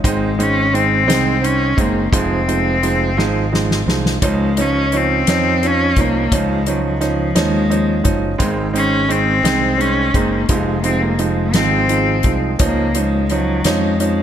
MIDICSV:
0, 0, Header, 1, 5, 480
1, 0, Start_track
1, 0, Key_signature, -5, "major"
1, 0, Tempo, 698487
1, 24, Time_signature, 6, 3, 24, 8
1, 9777, End_track
2, 0, Start_track
2, 0, Title_t, "Upright piano"
2, 0, Program_c, 0, 0
2, 27, Note_on_c, 0, 56, 87
2, 28, Note_on_c, 0, 63, 104
2, 29, Note_on_c, 0, 60, 84
2, 202, Note_off_c, 0, 56, 0
2, 203, Note_off_c, 0, 60, 0
2, 203, Note_off_c, 0, 63, 0
2, 266, Note_on_c, 0, 56, 79
2, 267, Note_on_c, 0, 60, 68
2, 267, Note_on_c, 0, 63, 79
2, 441, Note_off_c, 0, 56, 0
2, 442, Note_off_c, 0, 60, 0
2, 442, Note_off_c, 0, 63, 0
2, 502, Note_on_c, 0, 56, 72
2, 504, Note_on_c, 0, 60, 71
2, 508, Note_on_c, 0, 63, 84
2, 678, Note_off_c, 0, 56, 0
2, 680, Note_off_c, 0, 60, 0
2, 682, Note_off_c, 0, 63, 0
2, 739, Note_on_c, 0, 56, 90
2, 739, Note_on_c, 0, 60, 85
2, 743, Note_on_c, 0, 63, 105
2, 916, Note_off_c, 0, 56, 0
2, 916, Note_off_c, 0, 60, 0
2, 918, Note_off_c, 0, 63, 0
2, 974, Note_on_c, 0, 60, 69
2, 979, Note_on_c, 0, 63, 74
2, 1153, Note_off_c, 0, 60, 0
2, 1156, Note_off_c, 0, 63, 0
2, 1217, Note_on_c, 0, 56, 74
2, 1218, Note_on_c, 0, 60, 69
2, 1220, Note_on_c, 0, 63, 79
2, 1394, Note_off_c, 0, 56, 0
2, 1394, Note_off_c, 0, 60, 0
2, 1395, Note_off_c, 0, 63, 0
2, 1458, Note_on_c, 0, 53, 92
2, 1461, Note_on_c, 0, 63, 96
2, 1462, Note_on_c, 0, 56, 81
2, 1634, Note_off_c, 0, 53, 0
2, 1635, Note_off_c, 0, 63, 0
2, 1636, Note_off_c, 0, 56, 0
2, 1701, Note_on_c, 0, 53, 70
2, 1704, Note_on_c, 0, 56, 64
2, 1707, Note_on_c, 0, 63, 82
2, 1876, Note_off_c, 0, 53, 0
2, 1877, Note_off_c, 0, 56, 0
2, 1878, Note_off_c, 0, 63, 0
2, 1942, Note_on_c, 0, 53, 72
2, 1943, Note_on_c, 0, 56, 67
2, 1946, Note_on_c, 0, 63, 77
2, 2116, Note_off_c, 0, 53, 0
2, 2117, Note_off_c, 0, 56, 0
2, 2118, Note_off_c, 0, 63, 0
2, 2180, Note_on_c, 0, 53, 88
2, 2181, Note_on_c, 0, 56, 77
2, 2187, Note_on_c, 0, 63, 99
2, 2356, Note_off_c, 0, 53, 0
2, 2357, Note_off_c, 0, 56, 0
2, 2359, Note_off_c, 0, 63, 0
2, 2421, Note_on_c, 0, 53, 69
2, 2421, Note_on_c, 0, 56, 66
2, 2424, Note_on_c, 0, 63, 74
2, 2597, Note_off_c, 0, 53, 0
2, 2597, Note_off_c, 0, 56, 0
2, 2599, Note_off_c, 0, 63, 0
2, 2663, Note_on_c, 0, 53, 64
2, 2664, Note_on_c, 0, 56, 59
2, 2667, Note_on_c, 0, 63, 71
2, 2839, Note_off_c, 0, 53, 0
2, 2839, Note_off_c, 0, 56, 0
2, 2841, Note_off_c, 0, 63, 0
2, 2902, Note_on_c, 0, 53, 89
2, 2904, Note_on_c, 0, 61, 76
2, 2904, Note_on_c, 0, 63, 94
2, 3079, Note_off_c, 0, 53, 0
2, 3080, Note_off_c, 0, 61, 0
2, 3080, Note_off_c, 0, 63, 0
2, 3143, Note_on_c, 0, 53, 66
2, 3144, Note_on_c, 0, 61, 63
2, 3144, Note_on_c, 0, 63, 75
2, 3320, Note_off_c, 0, 53, 0
2, 3320, Note_off_c, 0, 61, 0
2, 3320, Note_off_c, 0, 63, 0
2, 3386, Note_on_c, 0, 53, 72
2, 3389, Note_on_c, 0, 61, 64
2, 3389, Note_on_c, 0, 63, 78
2, 3562, Note_off_c, 0, 53, 0
2, 3563, Note_off_c, 0, 63, 0
2, 3564, Note_off_c, 0, 61, 0
2, 3629, Note_on_c, 0, 53, 85
2, 3631, Note_on_c, 0, 61, 78
2, 3632, Note_on_c, 0, 63, 97
2, 3804, Note_off_c, 0, 53, 0
2, 3805, Note_off_c, 0, 61, 0
2, 3805, Note_off_c, 0, 63, 0
2, 3866, Note_on_c, 0, 53, 69
2, 3870, Note_on_c, 0, 61, 60
2, 3874, Note_on_c, 0, 63, 74
2, 4042, Note_off_c, 0, 53, 0
2, 4044, Note_off_c, 0, 61, 0
2, 4046, Note_off_c, 0, 63, 0
2, 4107, Note_on_c, 0, 53, 73
2, 4113, Note_on_c, 0, 63, 79
2, 4114, Note_on_c, 0, 61, 66
2, 4282, Note_off_c, 0, 53, 0
2, 4285, Note_off_c, 0, 61, 0
2, 4285, Note_off_c, 0, 63, 0
2, 4344, Note_on_c, 0, 61, 75
2, 4346, Note_on_c, 0, 53, 92
2, 4347, Note_on_c, 0, 63, 91
2, 4520, Note_off_c, 0, 61, 0
2, 4521, Note_off_c, 0, 53, 0
2, 4521, Note_off_c, 0, 63, 0
2, 4580, Note_on_c, 0, 53, 74
2, 4583, Note_on_c, 0, 61, 65
2, 4585, Note_on_c, 0, 63, 81
2, 4757, Note_off_c, 0, 53, 0
2, 4759, Note_off_c, 0, 61, 0
2, 4760, Note_off_c, 0, 63, 0
2, 4814, Note_on_c, 0, 53, 73
2, 4815, Note_on_c, 0, 63, 86
2, 4816, Note_on_c, 0, 61, 69
2, 4993, Note_off_c, 0, 53, 0
2, 4994, Note_off_c, 0, 61, 0
2, 4994, Note_off_c, 0, 63, 0
2, 5052, Note_on_c, 0, 53, 91
2, 5054, Note_on_c, 0, 63, 103
2, 5055, Note_on_c, 0, 61, 77
2, 5231, Note_off_c, 0, 53, 0
2, 5232, Note_off_c, 0, 63, 0
2, 5233, Note_off_c, 0, 61, 0
2, 5290, Note_on_c, 0, 53, 74
2, 5293, Note_on_c, 0, 61, 68
2, 5294, Note_on_c, 0, 63, 85
2, 5470, Note_off_c, 0, 53, 0
2, 5471, Note_off_c, 0, 61, 0
2, 5472, Note_off_c, 0, 63, 0
2, 5523, Note_on_c, 0, 53, 73
2, 5526, Note_on_c, 0, 61, 62
2, 5527, Note_on_c, 0, 63, 84
2, 5706, Note_off_c, 0, 53, 0
2, 5707, Note_off_c, 0, 61, 0
2, 5707, Note_off_c, 0, 63, 0
2, 5761, Note_on_c, 0, 56, 89
2, 5766, Note_on_c, 0, 60, 81
2, 5767, Note_on_c, 0, 63, 95
2, 5944, Note_off_c, 0, 56, 0
2, 5946, Note_off_c, 0, 60, 0
2, 5947, Note_off_c, 0, 63, 0
2, 5999, Note_on_c, 0, 56, 70
2, 6004, Note_on_c, 0, 60, 71
2, 6004, Note_on_c, 0, 63, 81
2, 6183, Note_off_c, 0, 56, 0
2, 6185, Note_off_c, 0, 60, 0
2, 6185, Note_off_c, 0, 63, 0
2, 6242, Note_on_c, 0, 56, 77
2, 6247, Note_on_c, 0, 60, 69
2, 6248, Note_on_c, 0, 63, 83
2, 6424, Note_off_c, 0, 56, 0
2, 6427, Note_off_c, 0, 60, 0
2, 6427, Note_off_c, 0, 63, 0
2, 6487, Note_on_c, 0, 56, 86
2, 6487, Note_on_c, 0, 60, 82
2, 6492, Note_on_c, 0, 63, 104
2, 6667, Note_off_c, 0, 56, 0
2, 6667, Note_off_c, 0, 60, 0
2, 6669, Note_off_c, 0, 63, 0
2, 6718, Note_on_c, 0, 56, 74
2, 6720, Note_on_c, 0, 60, 70
2, 6722, Note_on_c, 0, 63, 80
2, 6902, Note_off_c, 0, 56, 0
2, 6903, Note_off_c, 0, 60, 0
2, 6905, Note_off_c, 0, 63, 0
2, 6966, Note_on_c, 0, 56, 76
2, 6968, Note_on_c, 0, 60, 62
2, 6972, Note_on_c, 0, 63, 81
2, 7146, Note_off_c, 0, 56, 0
2, 7147, Note_off_c, 0, 60, 0
2, 7149, Note_off_c, 0, 63, 0
2, 7209, Note_on_c, 0, 53, 84
2, 7211, Note_on_c, 0, 56, 82
2, 7214, Note_on_c, 0, 63, 95
2, 7388, Note_off_c, 0, 53, 0
2, 7389, Note_off_c, 0, 56, 0
2, 7390, Note_off_c, 0, 63, 0
2, 7450, Note_on_c, 0, 53, 67
2, 7450, Note_on_c, 0, 56, 63
2, 7455, Note_on_c, 0, 63, 82
2, 7629, Note_off_c, 0, 53, 0
2, 7629, Note_off_c, 0, 56, 0
2, 7631, Note_off_c, 0, 63, 0
2, 7690, Note_on_c, 0, 53, 74
2, 7692, Note_on_c, 0, 63, 79
2, 7693, Note_on_c, 0, 56, 67
2, 7869, Note_off_c, 0, 53, 0
2, 7870, Note_off_c, 0, 63, 0
2, 7871, Note_off_c, 0, 56, 0
2, 7934, Note_on_c, 0, 53, 89
2, 7935, Note_on_c, 0, 56, 80
2, 7939, Note_on_c, 0, 63, 92
2, 8112, Note_off_c, 0, 53, 0
2, 8112, Note_off_c, 0, 56, 0
2, 8114, Note_off_c, 0, 63, 0
2, 8170, Note_on_c, 0, 53, 70
2, 8175, Note_on_c, 0, 56, 65
2, 8175, Note_on_c, 0, 63, 77
2, 8350, Note_off_c, 0, 53, 0
2, 8353, Note_off_c, 0, 56, 0
2, 8353, Note_off_c, 0, 63, 0
2, 8409, Note_on_c, 0, 53, 70
2, 8412, Note_on_c, 0, 56, 57
2, 8416, Note_on_c, 0, 63, 77
2, 8591, Note_off_c, 0, 53, 0
2, 8592, Note_off_c, 0, 56, 0
2, 8595, Note_off_c, 0, 63, 0
2, 8651, Note_on_c, 0, 53, 85
2, 8656, Note_on_c, 0, 61, 78
2, 8661, Note_on_c, 0, 63, 96
2, 8833, Note_off_c, 0, 53, 0
2, 8835, Note_off_c, 0, 61, 0
2, 8838, Note_off_c, 0, 63, 0
2, 8895, Note_on_c, 0, 53, 70
2, 8900, Note_on_c, 0, 61, 61
2, 8902, Note_on_c, 0, 63, 78
2, 9075, Note_off_c, 0, 53, 0
2, 9078, Note_off_c, 0, 61, 0
2, 9078, Note_off_c, 0, 63, 0
2, 9143, Note_on_c, 0, 53, 71
2, 9146, Note_on_c, 0, 61, 68
2, 9149, Note_on_c, 0, 63, 80
2, 9320, Note_off_c, 0, 53, 0
2, 9321, Note_off_c, 0, 61, 0
2, 9322, Note_off_c, 0, 63, 0
2, 9381, Note_on_c, 0, 53, 87
2, 9382, Note_on_c, 0, 61, 84
2, 9384, Note_on_c, 0, 63, 102
2, 9559, Note_off_c, 0, 53, 0
2, 9559, Note_off_c, 0, 61, 0
2, 9560, Note_off_c, 0, 63, 0
2, 9621, Note_on_c, 0, 53, 73
2, 9623, Note_on_c, 0, 61, 68
2, 9623, Note_on_c, 0, 63, 76
2, 9777, Note_off_c, 0, 53, 0
2, 9777, Note_off_c, 0, 61, 0
2, 9777, Note_off_c, 0, 63, 0
2, 9777, End_track
3, 0, Start_track
3, 0, Title_t, "Cello"
3, 0, Program_c, 1, 42
3, 44, Note_on_c, 1, 56, 86
3, 280, Note_on_c, 1, 61, 98
3, 290, Note_off_c, 1, 56, 0
3, 511, Note_on_c, 1, 60, 97
3, 521, Note_off_c, 1, 61, 0
3, 992, Note_on_c, 1, 61, 96
3, 1003, Note_off_c, 1, 60, 0
3, 1244, Note_on_c, 1, 58, 84
3, 1255, Note_off_c, 1, 61, 0
3, 1469, Note_off_c, 1, 58, 0
3, 1484, Note_on_c, 1, 60, 86
3, 2644, Note_off_c, 1, 60, 0
3, 2910, Note_on_c, 1, 56, 90
3, 3167, Note_on_c, 1, 61, 92
3, 3177, Note_off_c, 1, 56, 0
3, 3414, Note_on_c, 1, 60, 99
3, 3424, Note_off_c, 1, 61, 0
3, 3897, Note_on_c, 1, 61, 104
3, 3908, Note_off_c, 1, 60, 0
3, 4129, Note_on_c, 1, 58, 92
3, 4139, Note_off_c, 1, 61, 0
3, 4367, Note_on_c, 1, 56, 98
3, 4378, Note_off_c, 1, 58, 0
3, 4600, Note_on_c, 1, 54, 87
3, 4610, Note_off_c, 1, 56, 0
3, 4710, Note_off_c, 1, 54, 0
3, 4714, Note_on_c, 1, 54, 74
3, 4826, Note_on_c, 1, 53, 86
3, 4836, Note_off_c, 1, 54, 0
3, 5064, Note_on_c, 1, 56, 104
3, 5074, Note_off_c, 1, 53, 0
3, 5597, Note_off_c, 1, 56, 0
3, 5783, Note_on_c, 1, 56, 91
3, 5888, Note_off_c, 1, 56, 0
3, 6025, Note_on_c, 1, 61, 98
3, 6266, Note_on_c, 1, 60, 105
3, 6276, Note_off_c, 1, 61, 0
3, 6740, Note_on_c, 1, 61, 102
3, 6751, Note_off_c, 1, 60, 0
3, 6985, Note_on_c, 1, 58, 90
3, 6996, Note_off_c, 1, 61, 0
3, 7218, Note_off_c, 1, 58, 0
3, 7227, Note_on_c, 1, 56, 84
3, 7451, Note_on_c, 1, 60, 90
3, 7461, Note_off_c, 1, 56, 0
3, 7577, Note_on_c, 1, 58, 80
3, 7587, Note_off_c, 1, 60, 0
3, 7706, Note_on_c, 1, 56, 85
3, 7717, Note_off_c, 1, 58, 0
3, 7938, Note_on_c, 1, 60, 97
3, 7949, Note_off_c, 1, 56, 0
3, 8478, Note_off_c, 1, 60, 0
3, 8679, Note_on_c, 1, 58, 84
3, 8918, Note_on_c, 1, 56, 81
3, 8928, Note_off_c, 1, 58, 0
3, 9152, Note_on_c, 1, 54, 86
3, 9162, Note_off_c, 1, 56, 0
3, 9396, Note_on_c, 1, 56, 90
3, 9406, Note_off_c, 1, 54, 0
3, 9777, Note_off_c, 1, 56, 0
3, 9777, End_track
4, 0, Start_track
4, 0, Title_t, "Fingered electric bass"
4, 0, Program_c, 2, 33
4, 27, Note_on_c, 2, 32, 106
4, 740, Note_off_c, 2, 32, 0
4, 740, Note_on_c, 2, 36, 96
4, 1190, Note_off_c, 2, 36, 0
4, 1222, Note_on_c, 2, 30, 90
4, 1444, Note_off_c, 2, 30, 0
4, 1460, Note_on_c, 2, 29, 104
4, 2179, Note_off_c, 2, 29, 0
4, 2179, Note_on_c, 2, 32, 77
4, 2632, Note_off_c, 2, 32, 0
4, 2655, Note_on_c, 2, 36, 74
4, 2883, Note_off_c, 2, 36, 0
4, 2904, Note_on_c, 2, 37, 104
4, 3597, Note_off_c, 2, 37, 0
4, 3626, Note_on_c, 2, 41, 93
4, 4077, Note_off_c, 2, 41, 0
4, 4098, Note_on_c, 2, 36, 92
4, 4325, Note_off_c, 2, 36, 0
4, 4343, Note_on_c, 2, 37, 97
4, 5031, Note_off_c, 2, 37, 0
4, 5053, Note_on_c, 2, 39, 90
4, 5505, Note_off_c, 2, 39, 0
4, 5533, Note_on_c, 2, 30, 90
4, 5758, Note_off_c, 2, 30, 0
4, 5771, Note_on_c, 2, 32, 118
4, 6462, Note_off_c, 2, 32, 0
4, 6480, Note_on_c, 2, 36, 88
4, 6938, Note_off_c, 2, 36, 0
4, 6970, Note_on_c, 2, 30, 93
4, 7196, Note_off_c, 2, 30, 0
4, 7209, Note_on_c, 2, 29, 110
4, 7934, Note_off_c, 2, 29, 0
4, 7934, Note_on_c, 2, 32, 87
4, 8388, Note_off_c, 2, 32, 0
4, 8413, Note_on_c, 2, 36, 81
4, 8641, Note_off_c, 2, 36, 0
4, 8656, Note_on_c, 2, 37, 100
4, 9352, Note_off_c, 2, 37, 0
4, 9380, Note_on_c, 2, 41, 82
4, 9777, Note_off_c, 2, 41, 0
4, 9777, End_track
5, 0, Start_track
5, 0, Title_t, "Drums"
5, 29, Note_on_c, 9, 36, 108
5, 33, Note_on_c, 9, 42, 91
5, 98, Note_off_c, 9, 36, 0
5, 102, Note_off_c, 9, 42, 0
5, 274, Note_on_c, 9, 42, 54
5, 343, Note_off_c, 9, 42, 0
5, 515, Note_on_c, 9, 42, 48
5, 584, Note_off_c, 9, 42, 0
5, 754, Note_on_c, 9, 42, 83
5, 758, Note_on_c, 9, 38, 105
5, 822, Note_off_c, 9, 42, 0
5, 827, Note_off_c, 9, 38, 0
5, 992, Note_on_c, 9, 42, 52
5, 1060, Note_off_c, 9, 42, 0
5, 1222, Note_on_c, 9, 36, 97
5, 1225, Note_on_c, 9, 42, 47
5, 1291, Note_off_c, 9, 36, 0
5, 1293, Note_off_c, 9, 42, 0
5, 1461, Note_on_c, 9, 36, 111
5, 1465, Note_on_c, 9, 42, 93
5, 1530, Note_off_c, 9, 36, 0
5, 1534, Note_off_c, 9, 42, 0
5, 1709, Note_on_c, 9, 42, 55
5, 1778, Note_off_c, 9, 42, 0
5, 1946, Note_on_c, 9, 42, 46
5, 2014, Note_off_c, 9, 42, 0
5, 2189, Note_on_c, 9, 38, 57
5, 2258, Note_off_c, 9, 38, 0
5, 2432, Note_on_c, 9, 38, 74
5, 2501, Note_off_c, 9, 38, 0
5, 2550, Note_on_c, 9, 38, 70
5, 2618, Note_off_c, 9, 38, 0
5, 2670, Note_on_c, 9, 38, 92
5, 2738, Note_off_c, 9, 38, 0
5, 2788, Note_on_c, 9, 38, 82
5, 2856, Note_off_c, 9, 38, 0
5, 2901, Note_on_c, 9, 36, 113
5, 2901, Note_on_c, 9, 42, 95
5, 2970, Note_off_c, 9, 36, 0
5, 2970, Note_off_c, 9, 42, 0
5, 3140, Note_on_c, 9, 42, 55
5, 3209, Note_off_c, 9, 42, 0
5, 3381, Note_on_c, 9, 42, 46
5, 3450, Note_off_c, 9, 42, 0
5, 3622, Note_on_c, 9, 42, 84
5, 3627, Note_on_c, 9, 38, 99
5, 3691, Note_off_c, 9, 42, 0
5, 3696, Note_off_c, 9, 38, 0
5, 3868, Note_on_c, 9, 42, 53
5, 3937, Note_off_c, 9, 42, 0
5, 4098, Note_on_c, 9, 42, 48
5, 4101, Note_on_c, 9, 36, 94
5, 4167, Note_off_c, 9, 42, 0
5, 4170, Note_off_c, 9, 36, 0
5, 4342, Note_on_c, 9, 36, 109
5, 4343, Note_on_c, 9, 42, 97
5, 4411, Note_off_c, 9, 36, 0
5, 4412, Note_off_c, 9, 42, 0
5, 4579, Note_on_c, 9, 42, 55
5, 4648, Note_off_c, 9, 42, 0
5, 4819, Note_on_c, 9, 42, 47
5, 4826, Note_on_c, 9, 38, 34
5, 4888, Note_off_c, 9, 42, 0
5, 4895, Note_off_c, 9, 38, 0
5, 5055, Note_on_c, 9, 42, 80
5, 5060, Note_on_c, 9, 38, 99
5, 5124, Note_off_c, 9, 42, 0
5, 5129, Note_off_c, 9, 38, 0
5, 5301, Note_on_c, 9, 42, 52
5, 5370, Note_off_c, 9, 42, 0
5, 5530, Note_on_c, 9, 42, 48
5, 5533, Note_on_c, 9, 36, 90
5, 5598, Note_off_c, 9, 42, 0
5, 5602, Note_off_c, 9, 36, 0
5, 5771, Note_on_c, 9, 42, 86
5, 5773, Note_on_c, 9, 36, 108
5, 5840, Note_off_c, 9, 42, 0
5, 5841, Note_off_c, 9, 36, 0
5, 6017, Note_on_c, 9, 42, 57
5, 6085, Note_off_c, 9, 42, 0
5, 6257, Note_on_c, 9, 42, 45
5, 6325, Note_off_c, 9, 42, 0
5, 6495, Note_on_c, 9, 42, 78
5, 6499, Note_on_c, 9, 38, 102
5, 6563, Note_off_c, 9, 42, 0
5, 6568, Note_off_c, 9, 38, 0
5, 6739, Note_on_c, 9, 42, 50
5, 6808, Note_off_c, 9, 42, 0
5, 6970, Note_on_c, 9, 36, 86
5, 6972, Note_on_c, 9, 42, 49
5, 7039, Note_off_c, 9, 36, 0
5, 7040, Note_off_c, 9, 42, 0
5, 7207, Note_on_c, 9, 42, 88
5, 7210, Note_on_c, 9, 36, 101
5, 7276, Note_off_c, 9, 42, 0
5, 7279, Note_off_c, 9, 36, 0
5, 7447, Note_on_c, 9, 42, 54
5, 7516, Note_off_c, 9, 42, 0
5, 7688, Note_on_c, 9, 42, 45
5, 7757, Note_off_c, 9, 42, 0
5, 7927, Note_on_c, 9, 42, 83
5, 7932, Note_on_c, 9, 38, 100
5, 7996, Note_off_c, 9, 42, 0
5, 8001, Note_off_c, 9, 38, 0
5, 8172, Note_on_c, 9, 42, 55
5, 8241, Note_off_c, 9, 42, 0
5, 8404, Note_on_c, 9, 42, 48
5, 8413, Note_on_c, 9, 36, 96
5, 8473, Note_off_c, 9, 42, 0
5, 8482, Note_off_c, 9, 36, 0
5, 8654, Note_on_c, 9, 42, 96
5, 8657, Note_on_c, 9, 36, 106
5, 8723, Note_off_c, 9, 42, 0
5, 8726, Note_off_c, 9, 36, 0
5, 8896, Note_on_c, 9, 42, 56
5, 8965, Note_off_c, 9, 42, 0
5, 9136, Note_on_c, 9, 42, 47
5, 9205, Note_off_c, 9, 42, 0
5, 9377, Note_on_c, 9, 42, 86
5, 9382, Note_on_c, 9, 38, 94
5, 9445, Note_off_c, 9, 42, 0
5, 9450, Note_off_c, 9, 38, 0
5, 9621, Note_on_c, 9, 42, 57
5, 9689, Note_off_c, 9, 42, 0
5, 9777, End_track
0, 0, End_of_file